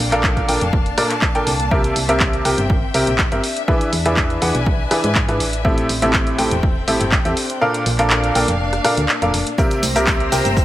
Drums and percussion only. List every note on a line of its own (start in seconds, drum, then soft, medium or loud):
0.12 clap soft
0.12 closed hi-hat medium
0.23 kick loud
0.23 clap loud
0.37 kick medium
0.37 closed hi-hat soft
0.49 open hi-hat loud
0.61 closed hi-hat medium
0.73 kick loud
0.86 closed hi-hat soft
0.98 cross-stick medium
0.98 open hi-hat loud
1.10 clap soft
1.10 closed hi-hat medium
1.22 kick loud
1.22 clap loud
1.35 closed hi-hat soft
1.47 open hi-hat loud
1.60 closed hi-hat medium
1.71 kick loud
1.84 closed hi-hat soft
1.96 open hi-hat loud
2.09 closed hi-hat medium
2.20 kick loud
2.20 clap loud
2.33 closed hi-hat soft
2.45 cross-stick medium
2.45 open hi-hat loud
2.58 closed hi-hat medium
2.70 kick loud
2.94 open hi-hat loud
3.07 closed hi-hat medium
3.18 kick loud
3.18 clap loud
3.32 closed hi-hat soft
3.44 open hi-hat loud
3.56 closed hi-hat medium
3.68 kick loud
3.81 closed hi-hat soft
3.93 open hi-hat loud
4.06 closed hi-hat medium
4.17 kick loud
4.17 clap loud
4.30 closed hi-hat soft
4.42 open hi-hat loud
4.55 closed hi-hat medium
4.66 kick loud
4.91 cross-stick medium
4.91 open hi-hat loud
5.04 closed hi-hat medium
5.15 kick loud
5.15 clap loud
5.29 closed hi-hat soft
5.40 open hi-hat loud
5.53 closed hi-hat medium
5.65 kick loud
5.78 closed hi-hat soft
5.89 open hi-hat medium
6.02 closed hi-hat medium
6.13 kick loud
6.13 clap loud
6.27 closed hi-hat soft
6.39 cross-stick medium
6.39 open hi-hat medium
6.51 closed hi-hat medium
6.63 kick loud
6.88 open hi-hat loud
7.01 closed hi-hat medium
7.12 kick loud
7.12 clap loud
7.25 closed hi-hat medium
7.37 open hi-hat loud
7.50 closed hi-hat medium
7.74 closed hi-hat medium
7.86 open hi-hat loud
7.98 clap soft
7.98 closed hi-hat medium
8.10 clap loud
8.24 closed hi-hat soft
8.35 open hi-hat loud
8.48 closed hi-hat medium
8.73 cross-stick medium
8.73 closed hi-hat soft
8.85 cross-stick medium
8.85 open hi-hat loud
8.97 closed hi-hat medium
9.09 clap loud
9.22 closed hi-hat medium
9.34 open hi-hat loud
9.47 closed hi-hat medium
9.58 kick loud
9.58 tambourine soft
9.58 cabasa soft
9.71 closed hi-hat medium
9.71 tambourine soft
9.83 open hi-hat loud
9.83 tambourine medium
9.83 high conga medium
9.83 cabasa medium
9.96 closed hi-hat medium
9.96 tambourine soft
9.96 cabasa soft
10.07 kick loud
10.07 clap loud
10.07 tambourine soft
10.07 cabasa soft
10.20 closed hi-hat soft
10.32 cross-stick medium
10.32 open hi-hat loud
10.32 tambourine medium
10.32 cabasa medium
10.45 closed hi-hat medium
10.45 tambourine soft
10.45 high conga medium
10.45 cabasa soft
10.57 kick loud
10.57 tambourine soft
10.57 cabasa soft